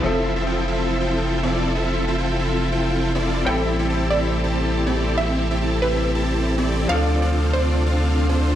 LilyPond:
<<
  \new Staff \with { instrumentName = "Synth pluck" } { \time 4/4 \key f \lydian \tempo 4 = 140 r1 | r1 | g''8 r4 d''2~ d''8 | e''8 r4 b'2~ b'8 |
f''8 r4 c''2~ c''8 | }
  \new Staff \with { instrumentName = "Supersaw synth" } { \time 4/4 \key f \lydian <c' e' f' a' e''>8. <c' e' f' a' e''>16 <c' e' f' a' g''>8 <c' e' f' a' e''>8. <c' e' f' a' g''>4 <c' e' f' a' d''>8. | <c' e' f' a' e''>8. <c' e' f' a' e''>16 <c' e' f' a' g''>8 <c' e' f' a' e''>8. <c' e' f' a' g''>4 <c' e' f' a' d''>8. | <c' e' g' a' e''>8. <c' e' g' a' e''>16 <c' e' g' a' a''>8 <c' e' g' a' e''>8. <c' e' g' a' a''>4 <c' e' g' a' d''>8. | <c' e' g' a' e''>8. <c' e' g' a' e''>16 <c' e' g' a' a''>8 <c' e' g' a' e''>8. <c' e' g' a' a''>4 <c' e' g' a' d''>8. |
<c' d' f' a' d''>8. <c' d' f' a' d''>16 <c' d' f' a' f''>8 <c' d' f' a' d''>8. <c' d' f' a' f''>4 <c' d' f' a' c''>8. | }
  \new Staff \with { instrumentName = "String section" } { \time 4/4 \key f \lydian << { <f a' e''>1~ | <f a' e''>1 | <a g'>1~ | <a g'>1 |
<d f'>1 | } \\ { r1 | r1 | c'1~ | c'1~ |
c'1 | } >> }
  \new Staff \with { instrumentName = "Grand piano" } { \time 4/4 \key f \lydian <f c' a' e''>1~ | <f c' a' e''>1 | <g c' e' a'>1~ | <g c' e' a'>1 |
<f c' d' a'>1 | }
  \new Staff \with { instrumentName = "Sub bass" } { \clef bass \time 4/4 \key f \lydian f,,1~ | f,,1 | a,,1~ | a,,1 |
d,1 | }
>>